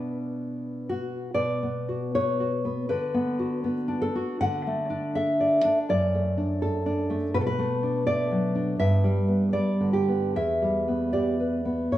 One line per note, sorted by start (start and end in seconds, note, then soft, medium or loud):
0.00 1.29 B2 soft
0.00 1.30 B3 soft
0.00 0.87 D4 soft
0.00 0.86 B4 medium
0.89 1.33 F#4 medium
1.34 2.86 B2 medium
1.34 2.11 D5 medium
1.63 2.14 B3 soft
1.89 2.39 F#4 soft
2.15 2.88 B4 soft
2.15 2.87 C#5 medium
2.40 2.90 F#4 soft
2.65 2.89 B3 soft
2.89 4.15 D3 soft
2.89 3.60 B4 medium
3.14 3.63 B3 soft
3.39 4.01 F#4 soft
3.64 4.41 B3 soft
3.88 4.41 D4 soft
4.02 4.39 A4 medium
4.15 4.40 F#4 soft
4.41 5.64 D3 medium
4.41 5.13 F#5 medium
4.67 5.77 A3 soft
4.90 5.63 D4 soft
5.15 5.89 A4 soft
5.15 5.86 E5 medium
5.40 5.88 D5 medium
5.65 5.89 D4 soft
5.89 7.30 F#2 medium
5.89 6.58 D5 medium
6.14 7.09 A3 soft
6.37 6.85 D4 soft
6.62 7.34 A4 medium
6.86 7.34 D4 soft
7.10 7.34 A3 medium
7.34 8.76 B2 medium
7.34 7.40 B4 medium
7.41 7.46 A4 medium
7.47 8.05 B4 medium
7.59 8.06 A3 medium
7.83 8.54 D4 soft
8.07 8.79 A3 soft
8.07 8.76 D5 medium
8.31 8.79 F#3 soft
8.55 8.79 D4 medium
8.79 10.31 G2 medium
8.79 9.50 E5 medium
9.04 9.52 G3 soft
9.28 10.07 B3 soft
9.53 10.35 G3 soft
9.53 9.92 D5 medium
9.80 10.36 D3 soft
9.93 10.33 G4 medium
10.08 10.35 B3 soft
10.36 11.87 E2 soft
10.36 11.09 E5 medium
10.62 11.78 G3 soft
10.88 11.64 B3 soft
11.13 11.39 G4 soft
11.13 11.88 D5 medium
11.40 11.92 B4 soft
11.65 11.92 B3 soft
11.92 11.98 A2 soft
11.92 11.98 C#5 medium